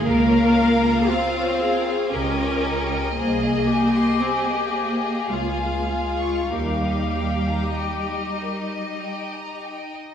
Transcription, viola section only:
X:1
M:3/4
L:1/8
Q:1/4=55
K:Ebmix
V:1 name="Viola section"
B2 F A B2 | A G3 F F | G4- G z |]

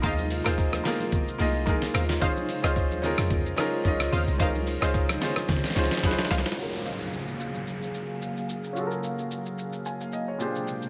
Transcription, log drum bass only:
X:1
M:4/4
L:1/16
Q:"Swing 16ths" 1/4=110
K:Gblyd
V:1 name="Log drum bass" clef=bass
E,,3 E,,3 z4 C,,4 E,,2 | z3 D,,2 E,,2 F,,3 z2 D,,2 E,, C,, | D,,3 D,,3 z2 D, z D,, z D,, z C,, z | z16 |
z16 |]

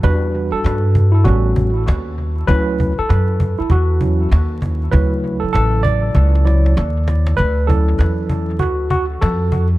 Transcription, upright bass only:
X:1
M:4/4
L:1/16
Q:"Swing 16ths" 1/4=98
K:D
V:1 name="Upright bass" clef=bass
E,,3 z G,,4 A,,,4 _E,,4 | D,,3 z F,,3 z E,,4 _E,,4 | D,,3 z A,,,4 C,,4 _E,,4 | D,,4 E,,4 D,,4 =F,,4 |]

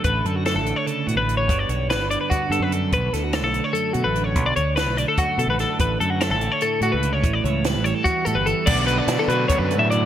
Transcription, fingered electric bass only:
X:1
M:7/8
L:1/16
Q:1/4=146
K:D
V:1 name="Fingered electric bass" clef=bass
A,,,2 F,,3 A,,,2 z3 A,, A,,,3 | G,,,2 B,,,3 G,,,2 z3 G,, F,,3 | B,,,2 D,,3 B,,,2 z3 B,, A,,,3 | B,,,2 D,,3 B,,,2 z3 B,, A,,,2 z |
A,,,2 F,,3 A,,,2 z3 A,, C,,3 | A,,,2 C,,3 A,,,2 z3 A,, G,,,2 z | B,,,4 B,, z B,,2 z F,,2 A,,3 |]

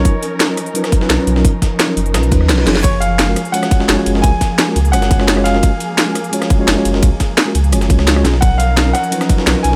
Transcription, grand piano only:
X:1
M:4/4
L:1/8
Q:1/4=172
K:F#
V:1 name="Grand piano"
c4- c z3 | z8 | c e3 f4 | g4 f3 e- |
e4- e z3 | z8 | f e2 f4 g |]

